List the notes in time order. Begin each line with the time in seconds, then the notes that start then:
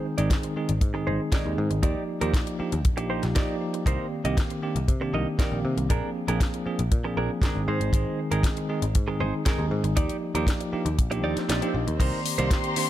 Already playing: D#3 G#3 C4 D#4 G#4
0.18 G#1 D#3 G#3 C4 D#4 G#4 D5, closed hi-hat
0.31 kick, snare, closed hi-hat
0.43 muted clean electric guitar stroke, closed hi-hat
0.56 D#3 G#3 C4 D#4 G#4
0.69 G#1, closed hi-hat
0.81 G#2, kick, closed hi-hat
0.94 D#3 G#3 C4 D#4 G#4, muted clean electric guitar stroke
1.07 G#1 D#4 G#4 C5
1.32 D#3 G#3 C4 D#4 G#4 D5, kick, snare, closed hi-hat
1.46 D#2
1.58 G#2
1.70 G#1, muted clean electric guitar stroke, closed hi-hat
1.83 D#2 F3 A#3 D#4 G4 D5, kick, closed hi-hat
2.20 D#2 F3 A#3 D#4 G4 A#4 D5, closed hi-hat
2.34 kick, snare, closed hi-hat
2.46 muted clean electric guitar stroke, closed hi-hat
2.59 F3 A#3 D4 D#4 G4, muted picked electric bass stroke
2.72 D#2, closed hi-hat
2.85 A#1, kick, closed hi-hat
2.97 F3 A#3 D4 D#4 G4, muted clean electric guitar stroke, closed hi-hat
3.10 D#4 G4 C5
3.23 A#1, snare, closed hi-hat
3.35 F3 A#3 D#4 G4 D5, kick, snare, closed hi-hat
3.74 muted clean electric guitar stroke, closed hi-hat
3.86 C2 D#3 A#3 C4 D#4 G4 A#4 C5 D5, kick, closed hi-hat
4.24 C2 D#3 A#3 C4 D#4 G4 A#4 D#5, closed hi-hat
4.37 kick, snare, closed hi-hat
4.50 muted clean electric guitar stroke, closed hi-hat
4.62 D#3 A#3 C4 D4 G4
4.76 C2, closed hi-hat
4.88 C3, kick, closed hi-hat
5.00 D#3 A#3 C4 D4 G4, muted clean electric guitar stroke
5.14 C2 D#4 A#4 D#5
5.38 D#3 A#3 C4 D#4 G4 A#4 D5, kick, snare, closed hi-hat
5.52 A#1
5.65 C3
5.77 C2, muted clean electric guitar stroke, closed hi-hat
5.89 A#1 F3 A#3 C4 D4 G#4 A#4, kick, closed hi-hat
6.27 A#1 F3 A#3 C4 D4 G#4 A#4, closed hi-hat
6.41 kick, snare, closed hi-hat
6.54 muted clean electric guitar stroke, closed hi-hat
6.66 F3 A#3 C4 D4 G#4, muted picked electric bass stroke
6.79 A#1, closed hi-hat
6.92 A#2, kick, closed hi-hat
7.04 F3 A#3 C4 D4 G#4, muted clean electric guitar stroke
7.17 A#1 D4 G#4 A#4
7.42 D#3 G#3 C4 D4 D#4 G#4 A#4, kick, snare, closed hi-hat
7.55 G#1
7.68 G#2 D#4 G#4 C5
7.81 G#1, closed hi-hat
7.93 G#1 D#3 G#3 C4 D#4 G#4, kick, closed hi-hat
8.31 G#1 D#3 G#3 C4 D#4 G#4 A#4, closed hi-hat
8.43 kick, snare, closed hi-hat
8.57 muted clean electric guitar stroke, closed hi-hat
8.69 D#3 G#3 C4 D#4 G#4
8.82 G#1, closed hi-hat
8.95 G#2, kick, closed hi-hat
9.07 D#3 G#3 C4 D#4 G#4, muted clean electric guitar stroke
9.20 G#1 D#4 G#4 C5
9.45 D#3 G#3 C4 D#4 G#4 A#4, kick, snare, closed hi-hat
9.59 D#2
9.71 G#2
9.84 G#1, muted clean electric guitar stroke, closed hi-hat
9.96 D#2 F3 A#3 D#4 G4 D5, kick, closed hi-hat
10.09 closed hi-hat
10.34 D#2 F3 A#3 D#4 G4 A#4 D5, closed hi-hat
10.47 kick, snare, closed hi-hat
10.60 muted clean electric guitar stroke, closed hi-hat
10.72 F3 A#3 D4 D#4 G4, muted picked electric bass stroke
10.86 D#2, closed hi-hat
10.99 A#1, kick, closed hi-hat, swell
11.11 F3 A#3 D4 D#4 G4, muted clean electric guitar stroke, closed hi-hat
11.24 D#2 D#4 G4 D5
11.37 muted picked electric bass stroke, snare, closed hi-hat
11.48 A#1 D#4 G4 D5 D#5, snare, closed hi-hat
11.62 F3 A#3 D4 D#4 G4, closed hi-hat
11.74 A#1
11.87 D#2, muted clean electric guitar stroke, closed hi-hat
12.00 C2 D#3 A#3 C4 D#4 G4 A#4 C5 D5 A#5 C6, kick, closed hi-hat, crash
12.26 open hi-hat
12.38 C2 D#3 A#3 C4 D#4 G4 A#4 C5 D5, closed hi-hat
12.51 kick, snare, closed hi-hat
12.63 muted clean electric guitar stroke, closed hi-hat
12.76 D#3 A#3 C4 D4 G4, open hi-hat